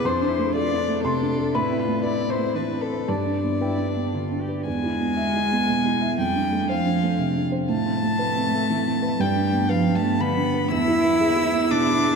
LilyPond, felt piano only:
\new Staff \with { instrumentName = "Felt piano" } { \time 3/4 \key a \minor \tempo 4 = 119 << { c'''2 c'''8 r8 | b''2. | a''4 g''4 r4 | r2. |
r2. | r2. | r2. | r2. | } \\ { \tuplet 3/2 { f,8 d'8 a8 a'8 d'8 a8 c8 d'8 a'8 } | \tuplet 3/2 { a,8 c'8 a8 b'8 c'8 a8 e8 c'8 b'8 } | \tuplet 3/2 { g,8 d'8 b8 b'8 d'8 b8 d8 d'8 b'8 } | \tuplet 3/2 { e,8 e'8 b8 e''8 e'8 b8 b,8 e'8 e''8 } |
\tuplet 3/2 { f,8 d'8 a8 c''8 d'8 a8 c8 d'8 c''8 } | \tuplet 3/2 { a,8 c'8 a8 b'8 c'8 a8 e8 c'8 b'8 } | \tuplet 3/2 { g,8 d'8 b8 b'8 d'8 b8 d8 d'8 b'8 } | \tuplet 3/2 { e,8 e'8 b8 gis'8 e'8 b8 b,8 e'8 gis'8 } | } >> }